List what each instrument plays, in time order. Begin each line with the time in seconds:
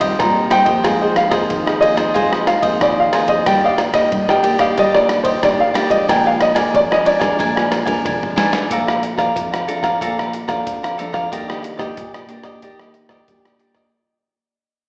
Already playing: nylon-string guitar D#3
0.01 nylon-string guitar G3 C4 F4, cavaquinho G4 C5 D#5, kick, ride
0.19 nylon-string guitar A#2 G3 C4 F4, cavaquinho D#4 G4 C5 D#5, grand piano A#5, kick, cross-stick, ride
0.50 nylon-string guitar G3 C4 F4, cavaquinho D#4 G4 C5 D#5, grand piano G5, cross-stick, ride
0.65 nylon-string guitar F3 A#3 C4, cavaquinho G4 C5 D#5, kick, ride
0.84 nylon-string guitar G#2, cavaquinho F4 G#4 C5 D#5, kick, cross-stick, ride
1.01 cavaquinho G#4 C5 D#5
1.16 grand piano F5, muted cavaquinho stroke, cross-stick, ride
1.31 nylon-string guitar F3 A#3 C4, cavaquinho G#4 C5 D#5, kick, cross-stick, ride
1.50 nylon-string guitar D#3, kick, ride
1.66 cavaquinho G#4 C5 D#5, cross-stick
1.81 nylon-string guitar F3 A#3 C4, cavaquinho F4 G#4 C5 D#5, grand piano D#5, ride
1.96 cavaquinho G#4 C5 D#5, kick, cross-stick, ride
2.14 nylon-string guitar G#2 F3 A#3 C4, cavaquinho F4 G#4 C5 D#5, kick, ride
2.32 cavaquinho G#4 C5 D#5, cross-stick
2.47 grand piano F5, muted cavaquinho stroke, cross-stick, ride
2.62 nylon-string guitar F3 A#3 C4, cavaquinho G#4 C5 D#5, kick, ride
2.80 nylon-string guitar D#3, cavaquinho F4 G#4 C5 D#5, grand piano D5, kick, cross-stick, ride
3.00 grand piano F5
3.12 nylon-string guitar F3 A#3 C4, cavaquinho F4 G#4 C5 D#5, cross-stick, ride
3.28 cavaquinho G#4 C5 D#5, grand piano D#5, kick, ride
3.45 nylon-string guitar G2 D#3 A#3 D4, cavaquinho D4 G4 D5 D#5, grand piano G5, kick, cross-stick, ride
3.64 cavaquinho G4 D5 D#5, grand piano F5
3.78 muted cavaquinho stroke, cross-stick, ride
3.92 nylon-string guitar D#3 A#3, cavaquinho G4 D#5, grand piano D#5, kick, cross-stick, ride
4.11 nylon-string guitar G2, kick, ride
4.28 cavaquinho G4 D5 D#5, grand piano G5, cross-stick
4.42 nylon-string guitar D#3 A#3 D4, cavaquinho D4 G4 D5 D#5, ride
4.59 cavaquinho G4 D5 D#5, grand piano F5, kick, cross-stick, ride
4.76 nylon-string guitar G2, cavaquinho D4 G4 D5 D#5, grand piano D#5, kick, ride
4.93 nylon-string guitar D#3 A#3 D4, cavaquinho G4 D5 D#5, grand piano D5, cross-stick
5.09 muted cavaquinho stroke, cross-stick, ride
5.24 cavaquinho G4 D5 D#5, grand piano C5, kick, ride
5.43 nylon-string guitar G2 D#3 A#3 D4, cavaquinho G4 D5 D#5, grand piano D5, kick, cross-stick, ride
5.60 grand piano F5
5.74 nylon-string guitar D#3 A#3 D4, cavaquinho D4 G4 D5 D#5, cross-stick, ride
5.90 nylon-string guitar F3 G#3 D4, cavaquinho G4 D5 D#5, grand piano D#5, kick, ride
6.08 nylon-string guitar A#2, cavaquinho D4 A#4 D5 G#5, grand piano G5, kick, cross-stick, ride
6.26 cavaquinho A#4 D5 G#5, grand piano F5
6.40 grand piano D#5, muted cavaquinho stroke, cross-stick, ride
6.55 nylon-string guitar F3 G#3 D4, cavaquinho A#4 D5 G#5, kick, cross-stick, ride
6.74 nylon-string guitar F2, grand piano D5, kick, ride
6.91 cavaquinho A#4 D5 G#5, grand piano D#5, cross-stick
7.05 nylon-string guitar F3 G#3 D4, cavaquinho D4 A#4 D5 G#5, grand piano D5, ride
7.19 nylon-string guitar F3 G#3 D4, cavaquinho A#4 D5 G#5, kick, cross-stick, ride
7.39 nylon-string guitar A#2, cavaquinho D4 A#4 D5 G#5, kick, ride
7.56 nylon-string guitar F3 G#3 D4, cavaquinho A#4 D5 G#5, cross-stick
7.71 muted cavaquinho stroke, cross-stick, ride
7.85 nylon-string guitar F3 G#3 D4, cavaquinho A#4 D5 G#5, kick, ride
8.05 nylon-string guitar F2 F3 G#3 D4, cavaquinho D4 A#4 D5 G#5, kick, high tom, ride
8.23 mid tom
8.36 cavaquinho D4 A#4 D5 G#5, snare, ride
8.52 cavaquinho A#4 D5 G#5, snare, ride
8.70 nylon-string guitar A#2 F3 A3 D4, cavaquinho A4 D5 F5 A#5, kick, closed hi-hat
8.87 cavaquinho D5 F5 A#5, cross-stick
9.03 muted cavaquinho stroke, closed hi-hat
9.17 nylon-string guitar F3 A3 D4, cavaquinho D5 F5 A#5, kick, cross-stick, closed hi-hat
9.36 nylon-string guitar F2, kick, closed hi-hat
9.52 cavaquinho D5 F5 A#5, cross-stick, closed hi-hat
9.68 nylon-string guitar F3 A3 D4, cavaquinho A4 D5 F5 A#5, closed hi-hat
9.83 cavaquinho D5 F5 A#5, kick, cross-stick, closed hi-hat
10.01 nylon-string guitar A#2 F3 A3 D4, cavaquinho A4 D5 F5 A#5, kick, closed hi-hat
10.18 cavaquinho D5 F5 A#5, cross-stick
10.33 muted cavaquinho stroke, closed hi-hat
10.48 nylon-string guitar F3 A3 D4, cavaquinho D5 F5 A#5, kick, cross-stick, closed hi-hat
10.67 nylon-string guitar F2, kick, closed hi-hat
10.83 cavaquinho D5 F5 A#5, cross-stick, closed hi-hat
10.98 nylon-string guitar F3 A3 D4, cavaquinho A4 D5 F5 A#5, closed hi-hat
11.13 cavaquinho D5 F5 A#5, kick, cross-stick
11.32 nylon-string guitar D#3 A#3 D4 G4, cavaquinho D4 G4 D5 D#5, kick, closed hi-hat
11.48 cavaquinho G4 D5 D#5, cross-stick
11.62 muted cavaquinho stroke, closed hi-hat
11.77 nylon-string guitar A#3 G4, cavaquinho G4 D5 D#5, kick, cross-stick, closed hi-hat
11.97 nylon-string guitar A#2, kick, closed hi-hat
12.14 cavaquinho G4 D5 D#5, cross-stick, closed hi-hat
12.28 nylon-string guitar A#3 D4 G4, cavaquinho D4 G4 D5 D#5, closed hi-hat
12.44 cavaquinho G4 D5 D#5, kick, cross-stick, closed hi-hat
12.62 nylon-string guitar D#3, cavaquinho D4 G4 D5 D#5, kick, closed hi-hat
12.79 nylon-string guitar A#3 D4 G4, cavaquinho G4 D5 D#5, cross-stick
12.94 muted cavaquinho stroke, closed hi-hat
13.09 cavaquinho G4 D5 D#5, kick, cross-stick
13.28 nylon-string guitar A#2 A#3 D4 G4, kick, closed hi-hat
13.45 cavaquinho G4 D5 D#5, cross-stick, closed hi-hat
13.59 cavaquinho D4 G4 D5 D#5, closed hi-hat
13.75 cavaquinho G4 D5 D#5, kick, cross-stick, closed hi-hat